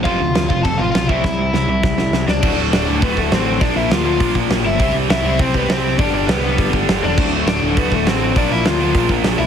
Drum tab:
CC |x-x-x-x-|--------|x-------|--------|
HH |--------|--------|--o-o-o-|o-o-o-o-|
SD |--o---o-|o-o-oooo|--o---o-|--o---o-|
BD |o--oo--o|o---o---|o---oo--|o---oo--|

CC |--------|--------|x-------|--------|
HH |o-o-o-o-|o-o-o-o-|--o-o-o-|o-o-o-o-|
SD |--o---o-|--o---o-|--o---o-|--o---o-|
BD |o---oo--|o---oo--|o---oo--|o---oo--|